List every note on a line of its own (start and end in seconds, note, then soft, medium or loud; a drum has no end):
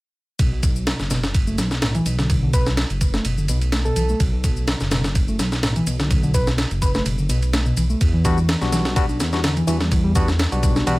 0.39 0.94 B1 medium
0.39 kick loud
0.39 ride medium
0.39 shaker soft
0.52 0.98 B2 medium
0.63 kick loud
0.63 ride medium
0.63 shaker medium
0.76 shaker soft
0.87 snare loud
0.87 ride medium
0.87 shaker soft
1.00 1.60 F#1 loud
1.00 snare soft
1.00 shaker soft
1.10 1.19 B2 medium
1.10 snare soft
1.10 ride medium
1.10 shaker medium
1.23 snare medium
1.23 shaker soft
1.34 kick loud
1.34 ride medium
1.34 shaker soft
1.47 1.57 A3 medium
1.47 shaker soft
1.58 2.01 B1 medium
1.58 1.67 F#3 medium
1.58 snare medium
1.58 ride medium
1.58 shaker medium
1.71 snare soft
1.71 shaker soft
1.82 1.94 A2 medium
1.82 snare loud
1.82 ride medium
1.82 shaker soft
1.95 2.05 E3 loud
1.95 ride soft
1.95 shaker soft
2.06 2.85 B1 loud
2.06 2.15 B2 medium
2.06 ride medium
2.06 shaker medium
2.19 2.41 D3 medium
2.19 snare soft
2.19 shaker soft
2.30 kick loud
2.30 ride medium
2.30 shaker soft
2.42 2.50 D3 medium
2.53 2.67 B4 medium
2.53 kick medium
2.53 ride medium
2.53 shaker medium
2.66 snare medium
2.66 shaker soft
2.77 snare loud
2.77 ride medium
2.77 shaker soft
2.90 3.20 F#1 loud
2.90 ride soft
2.90 shaker soft
3.01 kick medium
3.01 ride medium
3.01 shaker medium
3.14 3.24 A3 medium
3.14 snare medium
3.14 shaker soft
3.25 3.50 F#1 medium
3.25 3.34 B2 medium
3.25 ride medium
3.25 shaker soft
3.38 3.45 D3 medium
3.38 shaker soft
3.48 3.92 B1 loud
3.48 3.58 B2 loud
3.48 ride medium
3.48 shaker medium
3.61 ride soft
3.61 shaker soft
3.72 3.78 A3 medium
3.72 snare loud
3.72 ride medium
3.72 shaker soft
3.85 3.96 B2 loud
3.85 4.20 A4 loud
3.85 shaker soft
3.96 4.14 B1 medium
3.96 4.02 E3 medium
3.96 ride medium
3.96 shaker medium
4.09 4.20 A3 medium
4.09 shaker soft
4.20 4.75 B1 loud
4.20 kick loud
4.20 ride medium
4.20 shaker soft
4.33 4.80 B2 medium
4.44 kick medium
4.44 ride medium
4.44 shaker medium
4.57 shaker soft
4.67 snare loud
4.67 ride medium
4.67 shaker soft
4.80 5.41 F#1 medium
4.80 snare soft
4.80 shaker soft
4.91 5.01 B2 loud
4.91 snare loud
4.91 ride medium
4.91 shaker medium
5.04 snare medium
5.04 shaker soft
5.15 kick loud
5.15 ride medium
5.15 shaker soft
5.28 5.38 A3 medium
5.28 shaker soft
5.39 5.82 B1 medium
5.39 5.48 F#3 medium
5.39 snare medium
5.39 ride medium
5.39 shaker medium
5.52 snare soft
5.52 shaker soft
5.63 5.75 A2 medium
5.63 snare loud
5.63 ride medium
5.63 shaker soft
5.76 5.86 E3 medium
5.76 ride soft
5.76 shaker soft
5.87 6.65 B1 loud
5.87 5.96 B2 loud
5.87 ride medium
5.87 shaker medium
6.00 6.22 D3 medium
6.00 snare medium
6.00 shaker soft
6.11 kick loud
6.11 ride medium
6.11 shaker soft
6.23 6.31 D3 medium
6.23 shaker soft
6.34 6.48 B4 medium
6.34 kick medium
6.34 ride medium
6.34 shaker medium
6.47 snare medium
6.47 shaker soft
6.58 snare loud
6.58 ride medium
6.58 shaker soft
6.71 7.01 F#1 loud
6.71 ride soft
6.71 shaker soft
6.82 6.90 B4 medium
6.82 kick medium
6.82 ride medium
6.82 shaker medium
6.95 7.05 A3 medium
6.95 7.02 B4 medium
6.95 snare soft
6.95 shaker soft
7.06 7.31 F#1 medium
7.06 7.15 B2 medium
7.06 ride medium
7.06 shaker soft
7.18 7.26 D3 medium
7.18 shaker soft
7.29 7.72 B1 loud
7.29 7.38 B2 loud
7.29 ride medium
7.29 shaker medium
7.42 ride soft
7.42 shaker soft
7.53 7.59 A3 medium
7.53 snare loud
7.53 ride medium
7.53 shaker soft
7.66 7.77 B2 loud
7.66 shaker soft
7.77 7.95 B1 loud
7.77 7.83 E3 medium
7.77 ride medium
7.77 shaker medium
7.90 8.00 A3 medium
7.90 shaker soft
8.01 8.56 E2 loud
8.01 kick loud
8.01 ride medium
8.01 shaker soft
8.14 8.60 E3 medium
8.25 8.38 G3 medium
8.25 8.38 B3 medium
8.25 8.38 D4 medium
8.25 8.38 F#4 loud
8.25 kick medium
8.25 ride medium
8.25 shaker medium
8.38 shaker soft
8.49 snare loud
8.49 ride medium
8.49 shaker soft
8.61 9.21 B1 loud
8.61 8.94 G3 medium
8.61 8.94 B3 medium
8.61 8.94 D4 medium
8.61 8.94 F#4 medium
8.61 snare soft
8.61 shaker soft
8.72 8.81 E3 loud
8.72 snare soft
8.72 ride medium
8.72 shaker medium
8.85 snare medium
8.85 shaker soft
8.96 9.04 G3 medium
8.96 9.04 B3 medium
8.96 9.04 D4 medium
8.96 9.04 F#4 loud
8.96 kick loud
8.96 ride medium
8.96 shaker soft
9.09 9.19 D4 medium
9.09 shaker soft
9.20 9.63 E2 medium
9.20 9.29 B3 medium
9.20 snare medium
9.20 ride medium
9.20 shaker medium
9.33 9.40 G3 medium
9.33 9.40 B3 medium
9.33 9.40 D4 medium
9.33 9.40 F#4 medium
9.33 snare soft
9.33 shaker soft
9.44 9.56 D3 loud
9.44 snare loud
9.44 ride medium
9.44 shaker soft
9.57 9.66 E3 loud
9.57 ride soft
9.57 shaker soft
9.67 10.46 E2 loud
9.67 9.76 E3 medium
9.67 9.80 G3 medium
9.67 9.80 B3 medium
9.67 9.80 D4 medium
9.67 9.80 F#4 medium
9.67 ride medium
9.67 shaker medium
9.80 10.03 G3 medium
9.80 snare soft
9.80 shaker soft
9.91 kick loud
9.91 ride medium
9.91 shaker soft
10.04 10.12 G3 medium
10.15 10.28 G3 medium
10.15 10.28 B3 medium
10.15 10.28 D4 medium
10.15 10.28 F#4 loud
10.15 kick loud
10.15 ride medium
10.15 shaker medium
10.28 snare medium
10.28 shaker soft
10.39 snare loud
10.39 ride medium
10.39 shaker soft
10.52 10.82 B1 loud
10.52 10.84 G3 medium
10.52 10.84 B3 medium
10.52 10.84 D4 medium
10.52 10.84 F#4 medium
10.52 ride soft
10.52 shaker soft
10.63 kick medium
10.63 ride medium
10.63 shaker medium
10.76 10.86 D4 medium
10.76 snare medium
10.76 shaker soft
10.87 10.99 B1 medium
10.87 10.96 E3 medium
10.87 10.95 G3 medium
10.87 10.95 B3 medium
10.87 10.95 D4 medium
10.87 10.95 F#4 loud
10.87 ride medium
10.87 shaker soft